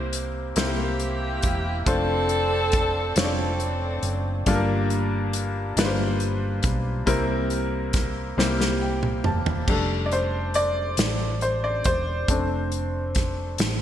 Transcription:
Already playing: C2 C3 A#3 C4 E4 G4 C5
0.13 closed hi-hat
0.56 C2 A#3 C4 E4 G4 C5, snare, closed hi-hat
1.00 closed hi-hat
1.42 E1, kick, closed hi-hat
1.86 F1 A3 C4 D4 F4 A4 C5, kick, closed hi-hat
2.29 closed hi-hat
2.72 kick, closed hi-hat
3.16 F1 A3 C4 D4 F4 A4 C#5, snare, closed hi-hat
3.24 D5
3.60 closed hi-hat
4.02 F#1, closed hi-hat
4.46 G1 G2 G3 A#3 D4 F4 A4, kick, closed hi-hat
4.54 A#4
4.90 closed hi-hat
5.33 closed hi-hat
5.76 G1 G3 A#3 D4 F4 B4, snare, closed hi-hat
5.85 C5
6.20 closed hi-hat
6.63 B1, kick, closed hi-hat
7.06 C2 C3 G3 A#3 C4 E4 A#4, kick, closed hi-hat
7.50 closed hi-hat
7.93 kick, snare, closed hi-hat
8.37 C2 G3 A#3 C4 E4 G4, snare
8.61 snare
8.81 G5
9.03 mid tom
9.24 E1 A5, mid tom
9.46 floor tom
9.68 F1 G3 A3 D4 A4, kick, crash
10.06 D5
10.12 C5, closed hi-hat
10.54 D5, closed hi-hat
10.97 A1, snare, closed hi-hat
11.41 C5, closed hi-hat
11.64 D5
11.84 E1 C5, kick, closed hi-hat
12.28 F1 A3 C4 D4, kick, closed hi-hat
12.72 closed hi-hat
13.15 kick, snare, closed hi-hat
13.58 A1, snare, closed hi-hat

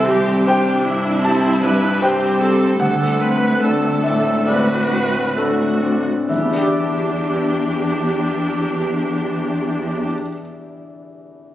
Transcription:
Already playing: C2 C3 C4 E5
0.06 G3 G4
0.45 D4 G4 C5 G5
0.83 G2 E4 G4
1.23 G3 C4 A5
1.62 G2 G3 B4
2.01 C4 G4 C5 G5
2.40 G3 G4 A4
2.80 D2 D3 A3 A4 F#5
3.21 C4 B4
3.63 D4 A4
4.04 A2 D4 E5
4.47 A3 C4 F#4 B4 D5
4.92 A2 C4
5.36 A3 D4 F#4 A4
5.83 C4 D4
6.28 E2 E3 D4 G4 E5
6.36 E3 B3
6.43 B3 D4
6.50 D4 E4
6.57 G4
6.64 D5

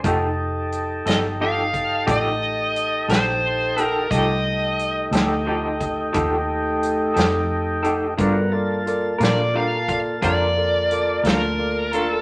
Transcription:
0.04 F1 F3 D#4 G4 A4, kick, closed hi-hat
0.72 closed hi-hat
1.06 G1 D#4 G4 A4 D#5, snare, closed hi-hat
1.40 F3 D#4 G4 A4 F5
1.74 kick, closed hi-hat
2.07 A1 F3 D#4 G4 A4, kick, closed hi-hat
2.11 D#5
2.76 closed hi-hat
3.08 A#1 D#4 G4 A4 C5, snare, closed hi-hat
3.77 D#4 G4 A4, closed hi-hat
3.83 A#4
4.11 C2 F3 A3 D#4 G4 A4 D#5, kick, closed hi-hat
4.79 closed hi-hat
5.11 D2 D#4 G4 A4, closed hi-hat
5.15 snare
5.46 F3 D#4 G4 A4
5.81 kick, closed hi-hat
6.13 D#2 F3 D#4 G4 A4, kick, closed hi-hat
6.83 closed hi-hat
7.14 F2 D#4 G4 A4, closed hi-hat
7.19 snare
7.83 D#4 G4 A4, closed hi-hat
8.17 G2 G3 B3 D4 F4 F#4 A4 A#4 D5, kick, closed hi-hat
8.52 A#3 F4 A4 A#4 D5 A5
8.86 F4 A4 A#4 D5, closed hi-hat
9.19 A#2 D4 F4 A4 A#4 D5, closed hi-hat
9.23 A#4 D5, snare
9.54 G3 D4 F4 A4 A#4 F5
9.88 F4 A4 A#4 D5 F5, kick, closed hi-hat
10.22 F2 G3 D4 F4 A4 A#4 D5, kick, closed hi-hat
10.57 F4 A4 A#4 D5
10.91 F4 A4 A#4 D5, closed hi-hat
11.23 D2 D4 F4 A4 A#4 D5, snare, closed hi-hat
11.59 F4 A4 A#4 D5
11.92 D4 F4 A4 A#4 D5, closed hi-hat

